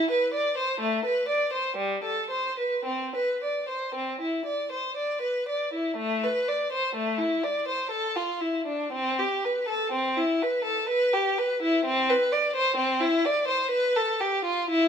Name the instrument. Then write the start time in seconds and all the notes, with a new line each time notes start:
violin
0.11 B4
0.34 D5
0.58 C5
0.81 A3
1.05 B4
1.29 D5
1.53 C5
1.77 G3
2.04 A4
2.31 C5
2.59 B4
2.85 C4
3.16 B4
3.44 D5
3.69 C5
3.95 C4
4.21 E4
4.46 D5
4.72 C5
4.97 D5
5.22 B4
5.49 D5
5.74 E4
5.97 A3
6.24 B4
6.48 D5
6.72 C5
6.95 A3
7.19 E4
7.43 D5
7.68 C5
7.91 A4
8.16 F4
8.41 E4
8.66 D4
8.93 C4
9.19 G4
9.45 B4
9.69 A4
9.92 C4
10.18 E4
10.43 B4
10.65 A4
10.89 B4
11.13 G4
11.38 B4
11.63 E4
11.85 C4
12.10 B4
12.32 D5
12.56 C5
12.77 C4
13.01 E4
13.25 D5
13.48 C5
13.71 B4
13.96 A4
14.20 G4
14.45 F4
14.70 E4